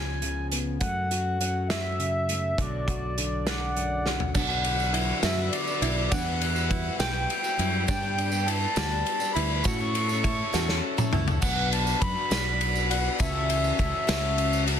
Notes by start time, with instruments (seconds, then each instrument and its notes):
Already playing: fingered electric bass C#2, steel-string acoustic guitar F3 B3 C#4 F4, accordion G#5
0.22 steel-string acoustic guitar C#3, closed hi-hat
0.52 steel-string acoustic guitar B3, closed hi-hat
0.81 steel-string acoustic guitar F#2 F#3 A3 C#4 F#4, fingered electric bass F#2, accordion F#5, kick, closed hi-hat
1.11 steel-string acoustic guitar F#4, closed hi-hat
1.40 steel-string acoustic guitar F#3 C#4, accordion F#5, closed hi-hat
1.70 accordion E5, snare, closed hi-hat
1.98 steel-string acoustic guitar C#3, closed hi-hat
2.28 steel-string acoustic guitar A3, closed hi-hat
2.58 fingered electric bass B1, steel-string acoustic guitar B2 D3 F#3 D4 F#4, accordion D5, kick, closed hi-hat
2.88 steel-string acoustic guitar F#4, kick, closed hi-hat
3.17 steel-string acoustic guitar D3 D4, closed hi-hat
3.46 accordion D5 F#5, snare, closed hi-hat
3.76 steel-string acoustic guitar F#2, closed hi-hat
4.06 steel-string acoustic guitar F#3, snare
4.20 floor tom
4.34 fingered electric bass B1, twelve-string acoustic guitar B2 F#3 B3 D4 F#4, five-string banjo D4, brass ensemble F#4 B4 D5 B5, accordion F#5, kick, crash, tambourine
4.49 twelve-string acoustic guitar B3 D4 F#4, tambourine
4.64 ride
4.78 twelve-string acoustic guitar B3 D4 F#4, tambourine
4.93 twelve-string acoustic guitar F#3 B3 D4 F#4, five-string banjo E4, ride
5.23 fingered electric bass F#2, twelve-string acoustic guitar B2 F#3 B3 D4 F#4, five-string banjo F#4, accordion E5, snare, ride, tambourine
5.38 twelve-string acoustic guitar B3 D4 F#4, tambourine
5.51 accordion D5, ride, tambourine
5.67 twelve-string acoustic guitar B3 D4 F#4, tambourine
5.81 fingered electric bass B1, twelve-string acoustic guitar F#3 B3 D4 F#4, five-string banjo E4, ride
6.11 fingered electric bass E2, twelve-string acoustic guitar E3 G3 B3 E4 F#4, brass ensemble G3 E5, five-string banjo D4, accordion F#5, kick, ride, tambourine
6.26 twelve-string acoustic guitar B3 E4 F#4, tambourine
6.41 ride
6.55 twelve-string acoustic guitar B3 E4 F#4, tambourine
6.70 twelve-string acoustic guitar G3 B3 E4 F#4, five-string banjo E4, kick, ride
6.99 fingered electric bass B1, twelve-string acoustic guitar E3 G3 B3 E4 F#4, five-string banjo G4, accordion G5, snare, ride, tambourine
7.14 twelve-string acoustic guitar B3 E4 F#4
7.29 ride, tambourine
7.43 twelve-string acoustic guitar B3 E4 F#4, tambourine
7.57 fingered electric bass F#2, twelve-string acoustic guitar G3 B3 E4 F#4, five-string banjo E4, ride, tambourine
7.87 twelve-string acoustic guitar G2 D3 G3 B3 D4 G4, fingered electric bass G2, five-string banjo D4, brass ensemble B4 D5 B5, accordion G5, kick, ride, tambourine
8.01 twelve-string acoustic guitar G3 B3 D4 G4, tambourine
8.18 ride
8.31 twelve-string acoustic guitar G3 B3 D4 G4, tambourine
8.46 twelve-string acoustic guitar G3 B3 D4 G4, five-string banjo E4, accordion A5, ride
8.76 fingered electric bass D2, twelve-string acoustic guitar G2 D3 G3 B3 D4 G4, five-string banjo F#4, snare, ride, tambourine
8.90 twelve-string acoustic guitar G3 B3 D4 G4, tambourine
9.06 ride, tambourine
9.19 twelve-string acoustic guitar G3 B3 D4 G4, tambourine
9.34 fingered electric bass D2, twelve-string acoustic guitar G3 B3 D4 G4, five-string banjo E4, accordion B5, ride
9.64 twelve-string acoustic guitar A2 E3 A3 C#4 E4 A4, fingered electric bass A2, brass ensemble E4 A4 C#5 A5, five-string banjo F#4, accordion C#6, kick, ride, tambourine
9.79 twelve-string acoustic guitar A3 C#4 E4 A4, tambourine
9.94 ride, tambourine
10.08 twelve-string acoustic guitar A3 C#4 E4 A4, tambourine
10.23 twelve-string acoustic guitar A3 C#4 E4 A4, five-string banjo E4, kick, ride, tambourine
10.53 fingered electric bass E2, twelve-string acoustic guitar A2 E3 A3 C#4 E4 A4, five-string banjo F#4, snare, tambourine
10.68 twelve-string acoustic guitar A3 C#4 E4 A4, snare
10.97 twelve-string acoustic guitar A3 C#4 E4 A4, mid tom, tambourine
11.11 fingered electric bass C#2, twelve-string acoustic guitar A3 C#4 E4 A4, five-string banjo E4, mid tom, tambourine
11.28 floor tom, tambourine
11.41 fingered electric bass B1, twelve-string acoustic guitar B2 F#3 B3 D4 F#4, brass ensemble F#4 B4 D5 B5, accordion F#5, kick, crash, tambourine
11.72 accordion A5, ride, tambourine
11.87 tambourine
12.00 fingered electric bass F#2, twelve-string acoustic guitar F#3 B3 D4 F#4, accordion B5, kick, ride
12.30 fingered electric bass B1, twelve-string acoustic guitar B2 F#3 B3 D4 F#4, snare, ride, tambourine
12.61 ride
12.76 tambourine
12.90 twelve-string acoustic guitar B3 D4 F#4, accordion F#5, ride
13.18 fingered electric bass C#2, twelve-string acoustic guitar C#3 E3 A3 C#4 F#4, brass ensemble C#5 E5 A5, accordion E5, kick, ride, tambourine
13.49 ride, tambourine
13.64 tambourine
13.77 fingered electric bass C#2, twelve-string acoustic guitar E3 A3 C#4 F#4, kick, ride
14.07 fingered electric bass C#2, twelve-string acoustic guitar C#3 E3 A3 C#4 F#4, snare, ride, tambourine
14.38 ride
14.53 tambourine
14.66 twelve-string acoustic guitar A3 C#4 F#4, ride